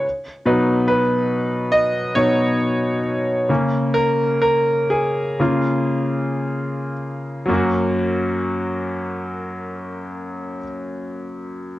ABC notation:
X:1
M:4/4
L:1/8
Q:1/4=60
K:F#
V:1 name="Grand piano"
z B B2 d c2 z | z A A G4 z | [F,A,CF]8 |]
V:2 name="Grand piano" clef=bass
z [B,,F,D] z3 [B,,F,D] z2 | [C,A,C]3 z [C,A,E]4 | F,,8 |]